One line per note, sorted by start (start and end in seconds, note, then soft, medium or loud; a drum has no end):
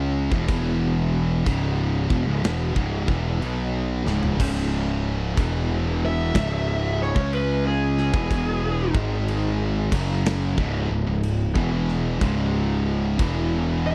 0.00 0.28 C#2 medium
0.00 0.31 C#3 medium
0.00 0.31 G#3 medium
0.00 0.31 C#4 loud
0.31 0.47 E1 medium
0.31 0.47 E2 medium
0.31 0.48 B2 medium
0.31 kick loud
0.48 1.42 E1 medium
0.48 1.45 E2 medium
0.48 1.46 B2 medium
0.48 1.46 E3 loud
0.48 kick loud
0.48 crash medium
1.46 2.06 C#1 loud
1.46 2.08 C#2 loud
1.46 2.08 G#2 medium
1.46 2.09 C#3 loud
1.46 kick loud
1.46 crash medium
2.10 2.26 E1 loud
2.10 2.25 E2 loud
2.10 2.26 B2 loud
2.10 kick loud
2.25 2.43 C#1 loud
2.25 2.42 C#2 medium
2.25 2.43 G#2 loud
2.43 2.73 E1 medium
2.43 2.73 E2 loud
2.43 2.74 B2 loud
2.43 snare loud
2.43 crash medium
2.74 3.06 C#1 medium
2.74 3.05 C#2 medium
2.74 3.05 G#2 loud
2.74 kick loud
3.06 3.40 E1 loud
3.06 3.40 E2 medium
3.06 3.39 B2 loud
3.06 3.40 E3 loud
3.06 kick loud
3.40 4.01 B1 medium
3.40 4.03 B2 medium
3.40 4.03 F#3 loud
3.40 4.03 B3 loud
3.40 crash medium
4.04 4.37 C#1 loud
4.04 4.37 C#2 loud
4.04 4.37 G#2 loud
4.04 4.38 C#3 loud
4.04 snare medium
4.23 floor tom medium
4.38 5.33 C#1 medium
4.38 5.35 C#2 medium
4.38 5.36 G#2 loud
4.38 5.36 C#3 medium
4.38 kick loud
4.38 crash loud
4.38 crash medium
5.36 6.31 E1 medium
5.36 6.33 E2 medium
5.36 6.33 B2 medium
5.36 6.34 E3 loud
5.36 kick loud
5.36 crash medium
6.05 6.99 E5 loud
6.34 7.11 C#1 medium
6.34 7.14 C#2 medium
6.34 7.15 G#2 loud
6.34 7.15 C#3 loud
6.34 kick loud
6.34 snare loud
6.34 crash medium
7.03 7.33 C#5 medium
7.15 8.09 C#2 medium
7.15 8.12 C#3 medium
7.15 8.12 G#3 medium
7.15 8.12 C#4 loud
7.15 kick loud
7.33 7.65 B4 medium
7.33 crash medium
7.67 7.97 G#4 medium
7.98 8.93 G#4 loud
7.98 snare soft
8.13 8.90 E1 medium
8.13 8.92 E2 medium
8.13 8.92 B2 medium
8.13 8.92 E3 loud
8.13 kick loud
8.31 kick loud
8.31 crash medium
8.94 9.88 G#1 medium
8.94 9.90 G#2 loud
8.94 9.90 D#3 medium
8.94 9.90 G#3 medium
8.94 kick loud
9.28 crash medium
9.92 10.54 F#1 loud
9.92 10.56 F#2 medium
9.92 10.56 C#3 loud
9.92 10.56 F#3 loud
9.92 kick loud
9.92 crash loud
10.26 snare loud
10.26 crash medium
10.57 10.87 C#1 loud
10.57 10.87 C#2 medium
10.57 10.87 G#2 loud
10.57 kick loud
10.89 11.05 C#1 medium
10.89 11.05 C#2 medium
10.89 11.05 G#2 medium
11.06 11.52 C#1 medium
11.06 11.42 C#2 medium
11.06 11.43 G#2 medium
11.23 crash medium
11.54 12.17 E1 loud
11.54 12.19 E2 medium
11.54 12.20 B2 loud
11.54 12.20 E3 loud
11.54 kick loud
11.88 snare soft
12.19 13.15 C#1 medium
12.19 13.17 C#2 medium
12.19 13.17 G#2 loud
12.19 13.18 C#3 loud
12.19 kick loud
12.19 crash medium
13.18 13.95 E1 medium
13.18 13.95 E2 medium
13.18 13.95 B2 loud
13.18 13.95 E3 loud
13.18 kick loud
13.18 crash medium
13.86 13.95 E5 loud